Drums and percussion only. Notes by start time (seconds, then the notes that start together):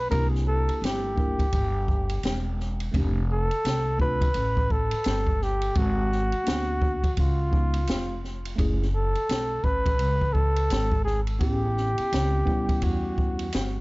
0.11 kick, ride
0.35 snare
0.69 ride
0.84 snare, hi-hat pedal, ride
1.18 kick
1.39 kick, ride
1.53 kick, ride
1.88 kick
2.09 ride
2.23 snare, hi-hat pedal, ride
2.60 snare
2.80 ride
2.94 kick, ride
3.51 ride
3.65 snare, hi-hat pedal, ride
4.00 kick
4.21 kick, ride
4.34 ride
4.57 kick
4.70 kick
4.91 ride
5.04 snare, hi-hat pedal, ride
5.27 kick
5.42 snare
5.62 ride
5.75 kick, ride
6.12 snare
6.32 ride
6.46 snare, hi-hat pedal, ride
6.82 kick
7.04 kick, ride
7.17 kick, ride
7.53 kick
7.73 ride
7.87 snare, hi-hat pedal, ride
8.24 snare
8.45 ride
8.58 kick, ride
8.82 snare
9.15 ride
9.29 snare, hi-hat pedal, ride
9.64 kick
9.86 kick, ride
9.99 ride
10.21 kick
10.35 kick
10.56 ride
10.70 snare, hi-hat pedal, ride
10.92 kick
11.07 snare
11.27 ride
11.41 kick, ride
11.77 snare
11.98 ride
12.13 snare, hi-hat pedal, ride
12.47 kick
12.69 kick, ride
12.82 kick, ride
13.18 kick
13.39 ride
13.52 snare, hi-hat pedal, ride